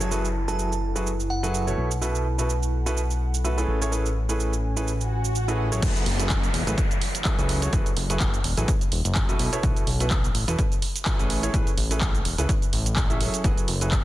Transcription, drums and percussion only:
0.01 shaker
0.11 shaker
0.25 shaker
0.48 shaker
0.59 shaker
0.72 shaker
0.96 shaker
1.07 shaker
1.20 shaker
1.44 shaker
1.54 shaker
1.68 shaker
1.91 shaker
2.02 shaker
2.15 shaker
2.39 shaker
2.50 shaker
2.63 shaker
2.87 shaker
2.97 shaker
3.10 shaker
3.34 shaker
3.45 shaker
3.58 shaker
3.82 shaker
3.92 shaker
4.06 shaker
4.29 shaker
4.40 shaker
4.53 shaker
4.77 shaker
4.88 shaker
5.01 shaker
5.25 shaker
5.35 shaker
5.48 shaker
5.72 shaker
5.82 kick, closed hi-hat, crash, shaker
5.96 closed hi-hat, shaker
6.06 open hi-hat
6.20 closed hi-hat, shaker
6.30 kick, clap, closed hi-hat, shaker
6.43 closed hi-hat, shaker
6.54 open hi-hat
6.67 closed hi-hat, shaker
6.78 kick, closed hi-hat, shaker
6.91 closed hi-hat, shaker
7.01 open hi-hat
7.15 closed hi-hat, shaker
7.25 kick, clap, closed hi-hat, shaker
7.39 closed hi-hat, shaker
7.49 open hi-hat
7.62 closed hi-hat, shaker
7.73 kick, closed hi-hat, shaker
7.86 closed hi-hat, shaker
7.97 open hi-hat
8.10 closed hi-hat, shaker
8.20 kick, clap, closed hi-hat, shaker
8.34 closed hi-hat, shaker
8.44 open hi-hat
8.57 closed hi-hat, shaker
8.68 kick, closed hi-hat, shaker
8.81 closed hi-hat, shaker
8.92 open hi-hat
9.05 closed hi-hat, shaker
9.15 kick, clap, closed hi-hat, shaker
9.29 closed hi-hat, shaker
9.39 open hi-hat
9.53 closed hi-hat, shaker
9.63 kick, closed hi-hat, shaker
9.76 closed hi-hat, shaker
9.87 open hi-hat
10.00 closed hi-hat, shaker
10.11 kick, clap, closed hi-hat, shaker
10.24 closed hi-hat, shaker
10.35 open hi-hat
10.48 closed hi-hat, shaker
10.59 kick, closed hi-hat, shaker
10.72 closed hi-hat, shaker
10.82 open hi-hat
10.96 closed hi-hat, shaker
11.06 kick, clap, closed hi-hat, shaker
11.19 closed hi-hat, shaker
11.30 open hi-hat
11.43 closed hi-hat, shaker
11.54 kick, closed hi-hat, shaker
11.67 closed hi-hat, shaker
11.78 open hi-hat
11.91 closed hi-hat, shaker
12.01 kick, clap, closed hi-hat, shaker
12.15 closed hi-hat, shaker
12.25 open hi-hat
12.38 closed hi-hat, shaker
12.49 kick, closed hi-hat, shaker
12.62 closed hi-hat, shaker
12.73 open hi-hat
12.86 closed hi-hat, shaker
12.96 kick, clap, closed hi-hat, shaker
13.10 closed hi-hat, shaker
13.21 open hi-hat
13.34 closed hi-hat, shaker
13.44 kick, closed hi-hat, shaker
13.57 closed hi-hat, shaker
13.68 open hi-hat
13.81 closed hi-hat, shaker
13.91 kick, clap, closed hi-hat, shaker

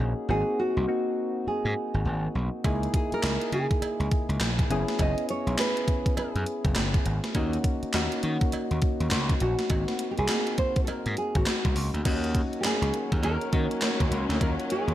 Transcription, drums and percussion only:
2.64 kick, closed hi-hat, cowbell
2.83 closed hi-hat
2.94 kick, closed hi-hat
3.12 closed hi-hat
3.23 snare, clap, closed hi-hat, cowbell
3.42 closed hi-hat
3.52 closed hi-hat
3.71 kick, closed hi-hat
3.82 closed hi-hat, cowbell
4.00 closed hi-hat
4.11 kick, closed hi-hat
4.30 closed hi-hat
4.41 snare, clap, closed hi-hat, cowbell
4.59 kick, closed hi-hat
4.71 closed hi-hat
4.88 snare, closed hi-hat
4.99 kick, closed hi-hat, cowbell
5.18 closed hi-hat
5.29 closed hi-hat
5.47 closed hi-hat
5.58 snare, clap, closed hi-hat, cowbell
5.77 closed hi-hat
5.88 kick, closed hi-hat
6.06 kick, closed hi-hat
6.17 closed hi-hat, cowbell
6.36 closed hi-hat
6.46 closed hi-hat
6.65 kick, closed hi-hat
6.76 snare, clap, closed hi-hat, cowbell
6.94 kick, closed hi-hat
7.06 closed hi-hat
7.24 snare, closed hi-hat
7.35 kick, closed hi-hat, cowbell
7.53 closed hi-hat
7.64 kick, closed hi-hat
7.83 closed hi-hat
7.93 snare, clap, closed hi-hat, cowbell
8.12 closed hi-hat
8.23 closed hi-hat
8.41 kick, closed hi-hat
8.52 closed hi-hat, cowbell
8.71 closed hi-hat
8.82 kick, closed hi-hat
9.00 closed hi-hat
9.11 snare, clap, closed hi-hat, cowbell
9.29 kick, closed hi-hat
9.40 closed hi-hat
9.59 snare, closed hi-hat
9.70 kick, closed hi-hat, cowbell
9.88 snare, closed hi-hat
9.99 closed hi-hat
10.18 closed hi-hat
10.28 snare, clap, closed hi-hat, cowbell
10.47 closed hi-hat
10.58 kick, closed hi-hat
10.76 kick, closed hi-hat
10.87 closed hi-hat, cowbell
11.06 closed hi-hat
11.17 closed hi-hat
11.35 kick, closed hi-hat
11.46 snare, clap, closed hi-hat, cowbell
11.65 kick, closed hi-hat
11.76 open hi-hat
11.95 closed hi-hat
12.05 kick, closed hi-hat, crash, cowbell
12.24 closed hi-hat
12.35 kick, closed hi-hat
12.53 closed hi-hat
12.64 snare, clap, closed hi-hat, cowbell
12.82 closed hi-hat
12.94 closed hi-hat
13.12 kick, closed hi-hat
13.23 closed hi-hat, cowbell
13.41 closed hi-hat
13.53 kick, closed hi-hat
13.71 closed hi-hat
13.82 snare, clap, closed hi-hat, cowbell
14.00 kick, closed hi-hat
14.12 closed hi-hat
14.30 snare, closed hi-hat
14.41 kick, closed hi-hat, cowbell
14.60 closed hi-hat
14.70 closed hi-hat
14.88 closed hi-hat

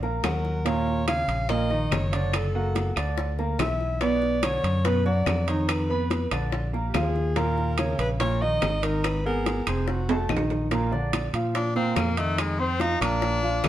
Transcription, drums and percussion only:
0.03 high bongo
0.24 high bongo, low bongo, high timbale, low timbale, claves
0.45 high bongo
0.66 high bongo, high timbale
0.87 high bongo
1.08 high bongo, high timbale, low timbale, claves
1.29 high timbale
1.49 high bongo, high timbale
1.71 high bongo
1.92 high bongo, low bongo, high timbale, low timbale, claves
2.13 high bongo, high timbale
2.33 high bongo, high timbale, claves
2.76 high bongo, high timbale, low timbale
2.96 high bongo, high timbale, claves
3.18 high bongo
3.39 high bongo
3.59 high bongo, low bongo, high timbale, low timbale, claves
3.80 high bongo
4.01 high bongo, high timbale
4.22 high bongo
4.43 high bongo, high timbale, low timbale, claves
4.64 high timbale
4.85 high bongo, high timbale
5.06 high bongo
5.26 high bongo, low bongo, high timbale, low timbale, claves
5.48 high bongo, high timbale
5.69 high bongo, high timbale, claves
6.11 high bongo, high timbale, low timbale
6.31 high bongo, high timbale, claves
6.52 high bongo
6.74 high bongo
6.94 high bongo, low bongo, high timbale, low timbale, claves
7.15 high bongo
7.36 high bongo, high timbale
7.58 high bongo
7.78 high bongo, high timbale, low timbale, claves
7.99 high timbale
8.20 high bongo, high timbale
8.42 high bongo
8.62 high bongo, low bongo, high timbale, low timbale, claves
8.83 high bongo, high timbale
9.04 high bongo, high timbale, claves
9.46 high bongo, high timbale, low timbale
9.67 high bongo, high timbale, claves
9.88 high bongo
10.09 high bongo, high timbale
10.29 high bongo, low bongo, claves
10.37 low timbale
10.50 high bongo, low timbale
10.71 high bongo, high timbale
10.93 high bongo
11.13 high bongo, high timbale, low timbale, claves
11.34 high timbale
11.55 high bongo, high timbale
11.76 high bongo
11.96 high bongo, low bongo, high timbale, low timbale, claves
12.17 high bongo, high timbale
12.38 high bongo, high timbale, claves
12.80 high bongo, high timbale, low timbale
13.01 high bongo, high timbale, claves
13.22 high bongo
13.43 high bongo
13.64 high bongo, low bongo, high timbale, low timbale, claves

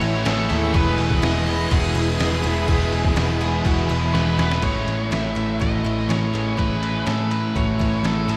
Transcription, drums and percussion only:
0.01 crash
0.26 snare, crash
0.50 snare, crash
0.74 kick, crash
0.98 crash
1.11 kick, snare
1.23 snare, crash
1.48 crash
1.71 kick, crash
1.96 crash
2.20 snare, crash
2.44 snare, crash
2.68 kick, crash
2.92 crash
3.05 kick, snare
3.16 snare, crash
3.41 crash
3.65 kick, crash
3.89 crash
4.15 snare
4.39 snare
4.52 snare
4.62 kick, crash, ride
4.88 ride
5.12 snare, ride
5.36 ride
5.61 kick, ride
5.86 ride
5.99 snare
6.10 snare, ride
6.35 ride
6.58 kick, ride
6.83 ride
7.07 snare, ride
7.31 ride
7.56 kick, ride
7.80 kick, ride
8.04 snare, ride
8.29 ride

